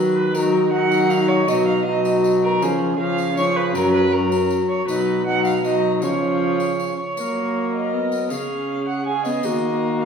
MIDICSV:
0, 0, Header, 1, 6, 480
1, 0, Start_track
1, 0, Tempo, 379027
1, 437, Time_signature, 3, 2, 24, 8
1, 12727, End_track
2, 0, Start_track
2, 0, Title_t, "Violin"
2, 0, Program_c, 0, 40
2, 190, Note_on_c, 0, 71, 87
2, 427, Note_on_c, 0, 70, 98
2, 446, Note_off_c, 0, 71, 0
2, 903, Note_off_c, 0, 70, 0
2, 910, Note_on_c, 0, 78, 108
2, 1389, Note_on_c, 0, 77, 110
2, 1408, Note_off_c, 0, 78, 0
2, 1624, Note_on_c, 0, 73, 96
2, 1643, Note_off_c, 0, 77, 0
2, 1873, Note_on_c, 0, 75, 104
2, 1892, Note_off_c, 0, 73, 0
2, 2105, Note_off_c, 0, 75, 0
2, 2112, Note_on_c, 0, 77, 105
2, 2343, Note_off_c, 0, 77, 0
2, 2350, Note_on_c, 0, 75, 100
2, 2821, Note_off_c, 0, 75, 0
2, 3082, Note_on_c, 0, 70, 98
2, 3328, Note_on_c, 0, 68, 87
2, 3347, Note_off_c, 0, 70, 0
2, 3778, Note_off_c, 0, 68, 0
2, 3785, Note_on_c, 0, 77, 107
2, 4254, Note_off_c, 0, 77, 0
2, 4278, Note_on_c, 0, 73, 108
2, 4509, Note_on_c, 0, 71, 96
2, 4528, Note_off_c, 0, 73, 0
2, 4755, Note_on_c, 0, 70, 106
2, 4774, Note_off_c, 0, 71, 0
2, 4974, Note_off_c, 0, 70, 0
2, 4982, Note_on_c, 0, 71, 102
2, 5215, Note_on_c, 0, 70, 92
2, 5234, Note_off_c, 0, 71, 0
2, 5696, Note_off_c, 0, 70, 0
2, 5933, Note_on_c, 0, 73, 91
2, 6157, Note_off_c, 0, 73, 0
2, 6178, Note_on_c, 0, 71, 93
2, 6647, Note_off_c, 0, 71, 0
2, 6668, Note_on_c, 0, 78, 109
2, 6898, Note_off_c, 0, 78, 0
2, 6909, Note_on_c, 0, 77, 95
2, 7139, Note_off_c, 0, 77, 0
2, 7155, Note_on_c, 0, 75, 99
2, 7621, Note_off_c, 0, 75, 0
2, 7642, Note_on_c, 0, 73, 85
2, 8825, Note_off_c, 0, 73, 0
2, 8838, Note_on_c, 0, 73, 78
2, 9753, Note_off_c, 0, 73, 0
2, 9805, Note_on_c, 0, 75, 78
2, 10511, Note_off_c, 0, 75, 0
2, 10528, Note_on_c, 0, 77, 83
2, 11231, Note_off_c, 0, 77, 0
2, 11248, Note_on_c, 0, 78, 79
2, 11469, Note_off_c, 0, 78, 0
2, 11477, Note_on_c, 0, 80, 87
2, 11708, Note_off_c, 0, 80, 0
2, 11715, Note_on_c, 0, 75, 88
2, 12657, Note_off_c, 0, 75, 0
2, 12680, Note_on_c, 0, 77, 89
2, 12727, Note_off_c, 0, 77, 0
2, 12727, End_track
3, 0, Start_track
3, 0, Title_t, "Recorder"
3, 0, Program_c, 1, 74
3, 0, Note_on_c, 1, 71, 71
3, 449, Note_on_c, 1, 63, 72
3, 468, Note_off_c, 1, 71, 0
3, 911, Note_off_c, 1, 63, 0
3, 918, Note_on_c, 1, 63, 73
3, 1855, Note_off_c, 1, 63, 0
3, 1889, Note_on_c, 1, 63, 75
3, 2352, Note_off_c, 1, 63, 0
3, 2363, Note_on_c, 1, 65, 68
3, 2409, Note_on_c, 1, 63, 74
3, 2421, Note_off_c, 1, 65, 0
3, 3326, Note_on_c, 1, 61, 78
3, 3345, Note_off_c, 1, 63, 0
3, 3790, Note_off_c, 1, 61, 0
3, 3797, Note_on_c, 1, 61, 70
3, 4260, Note_off_c, 1, 61, 0
3, 4284, Note_on_c, 1, 63, 71
3, 4336, Note_on_c, 1, 61, 77
3, 4349, Note_off_c, 1, 63, 0
3, 4743, Note_off_c, 1, 61, 0
3, 4780, Note_on_c, 1, 61, 80
3, 5230, Note_off_c, 1, 61, 0
3, 5237, Note_on_c, 1, 61, 74
3, 5837, Note_off_c, 1, 61, 0
3, 6187, Note_on_c, 1, 63, 74
3, 6628, Note_off_c, 1, 63, 0
3, 6659, Note_on_c, 1, 63, 68
3, 7130, Note_off_c, 1, 63, 0
3, 7155, Note_on_c, 1, 63, 67
3, 7650, Note_on_c, 1, 61, 72
3, 7669, Note_off_c, 1, 63, 0
3, 8853, Note_off_c, 1, 61, 0
3, 9087, Note_on_c, 1, 71, 58
3, 9129, Note_on_c, 1, 70, 63
3, 9142, Note_off_c, 1, 71, 0
3, 10523, Note_on_c, 1, 68, 62
3, 10542, Note_off_c, 1, 70, 0
3, 11482, Note_off_c, 1, 68, 0
3, 11491, Note_on_c, 1, 68, 60
3, 11971, Note_on_c, 1, 66, 70
3, 11990, Note_off_c, 1, 68, 0
3, 12727, Note_off_c, 1, 66, 0
3, 12727, End_track
4, 0, Start_track
4, 0, Title_t, "Viola"
4, 0, Program_c, 2, 41
4, 0, Note_on_c, 2, 54, 74
4, 412, Note_off_c, 2, 54, 0
4, 442, Note_on_c, 2, 54, 73
4, 909, Note_off_c, 2, 54, 0
4, 915, Note_on_c, 2, 54, 76
4, 1853, Note_off_c, 2, 54, 0
4, 1878, Note_on_c, 2, 54, 73
4, 2346, Note_off_c, 2, 54, 0
4, 2362, Note_on_c, 2, 54, 75
4, 3313, Note_on_c, 2, 53, 72
4, 3332, Note_off_c, 2, 54, 0
4, 3777, Note_off_c, 2, 53, 0
4, 3784, Note_on_c, 2, 53, 73
4, 4253, Note_off_c, 2, 53, 0
4, 4273, Note_on_c, 2, 53, 72
4, 4743, Note_on_c, 2, 54, 74
4, 4762, Note_off_c, 2, 53, 0
4, 5202, Note_off_c, 2, 54, 0
4, 5210, Note_on_c, 2, 54, 74
4, 6152, Note_off_c, 2, 54, 0
4, 6165, Note_on_c, 2, 54, 70
4, 6640, Note_off_c, 2, 54, 0
4, 6666, Note_on_c, 2, 54, 68
4, 7125, Note_off_c, 2, 54, 0
4, 7133, Note_on_c, 2, 54, 68
4, 7619, Note_on_c, 2, 53, 65
4, 7638, Note_off_c, 2, 54, 0
4, 8838, Note_off_c, 2, 53, 0
4, 9089, Note_on_c, 2, 58, 59
4, 10050, Note_on_c, 2, 59, 55
4, 10069, Note_off_c, 2, 58, 0
4, 10521, Note_on_c, 2, 61, 59
4, 10540, Note_off_c, 2, 59, 0
4, 11481, Note_off_c, 2, 61, 0
4, 11487, Note_on_c, 2, 61, 60
4, 11723, Note_on_c, 2, 59, 58
4, 11742, Note_off_c, 2, 61, 0
4, 11967, Note_on_c, 2, 58, 67
4, 11986, Note_off_c, 2, 59, 0
4, 12727, Note_off_c, 2, 58, 0
4, 12727, End_track
5, 0, Start_track
5, 0, Title_t, "Trombone"
5, 0, Program_c, 3, 57
5, 0, Note_on_c, 3, 51, 71
5, 1882, Note_on_c, 3, 47, 78
5, 1901, Note_off_c, 3, 51, 0
5, 3300, Note_off_c, 3, 47, 0
5, 3307, Note_on_c, 3, 49, 74
5, 4749, Note_on_c, 3, 42, 80
5, 4768, Note_off_c, 3, 49, 0
5, 5827, Note_off_c, 3, 42, 0
5, 6188, Note_on_c, 3, 47, 74
5, 7630, Note_on_c, 3, 49, 66
5, 7649, Note_off_c, 3, 47, 0
5, 8843, Note_off_c, 3, 49, 0
5, 9088, Note_on_c, 3, 54, 55
5, 10521, Note_on_c, 3, 49, 61
5, 10540, Note_off_c, 3, 54, 0
5, 11947, Note_off_c, 3, 49, 0
5, 11955, Note_on_c, 3, 51, 62
5, 12727, Note_off_c, 3, 51, 0
5, 12727, End_track
6, 0, Start_track
6, 0, Title_t, "Drums"
6, 438, Note_on_c, 9, 54, 75
6, 565, Note_off_c, 9, 54, 0
6, 1158, Note_on_c, 9, 54, 51
6, 1285, Note_off_c, 9, 54, 0
6, 1393, Note_on_c, 9, 54, 51
6, 1520, Note_off_c, 9, 54, 0
6, 1876, Note_on_c, 9, 54, 78
6, 2003, Note_off_c, 9, 54, 0
6, 2596, Note_on_c, 9, 54, 53
6, 2723, Note_off_c, 9, 54, 0
6, 2838, Note_on_c, 9, 54, 52
6, 2965, Note_off_c, 9, 54, 0
6, 3322, Note_on_c, 9, 54, 78
6, 3449, Note_off_c, 9, 54, 0
6, 4028, Note_on_c, 9, 54, 50
6, 4155, Note_off_c, 9, 54, 0
6, 4270, Note_on_c, 9, 54, 50
6, 4396, Note_off_c, 9, 54, 0
6, 4749, Note_on_c, 9, 54, 78
6, 4876, Note_off_c, 9, 54, 0
6, 5468, Note_on_c, 9, 54, 53
6, 5595, Note_off_c, 9, 54, 0
6, 5705, Note_on_c, 9, 54, 51
6, 5832, Note_off_c, 9, 54, 0
6, 6184, Note_on_c, 9, 54, 77
6, 6311, Note_off_c, 9, 54, 0
6, 6899, Note_on_c, 9, 54, 50
6, 7026, Note_off_c, 9, 54, 0
6, 7150, Note_on_c, 9, 54, 50
6, 7277, Note_off_c, 9, 54, 0
6, 7620, Note_on_c, 9, 54, 74
6, 7747, Note_off_c, 9, 54, 0
6, 8357, Note_on_c, 9, 54, 46
6, 8483, Note_off_c, 9, 54, 0
6, 8605, Note_on_c, 9, 54, 49
6, 8731, Note_off_c, 9, 54, 0
6, 9082, Note_on_c, 9, 54, 71
6, 9209, Note_off_c, 9, 54, 0
6, 10280, Note_on_c, 9, 54, 49
6, 10407, Note_off_c, 9, 54, 0
6, 10513, Note_on_c, 9, 54, 71
6, 10640, Note_off_c, 9, 54, 0
6, 11711, Note_on_c, 9, 54, 49
6, 11838, Note_off_c, 9, 54, 0
6, 11944, Note_on_c, 9, 54, 70
6, 12071, Note_off_c, 9, 54, 0
6, 12727, End_track
0, 0, End_of_file